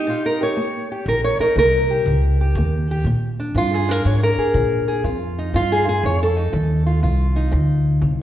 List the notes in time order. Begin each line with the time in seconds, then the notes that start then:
Already playing: D#4 G4
0.07 A#2 F4
0.26 A#4
0.41 G4 C#5
0.57 A#3
0.92 G4
1.06 A#1 D#3 A#4
1.24 C#5
1.39 D#4 A#4, muted upright bass stroke
1.56 C2 A#3 A#4
1.91 G4
2.06 C#2 A#2
2.41 G4
2.55 D#2 A#3
2.91 G4
3.04 A#2
3.40 D4
3.55 G2 F3 F4
3.74 G#4
3.89 D4 A#4
4.05 F2 G#2 C#5
4.23 A#4
4.37 G#4, muted upright bass stroke
4.54 A#2 F3
4.88 G#4
5.04 F2 F4
5.39 D#4
5.54 G2 F3 F4
5.72 G#4
5.88 F4 G#4
6.03 F2 C#5
6.23 A4
6.36 D#4
6.53 D#2 F3
6.86 F4
7.03 C2 F2 F4
7.36 D#4
7.51 D2 F3
8.01 C2 F2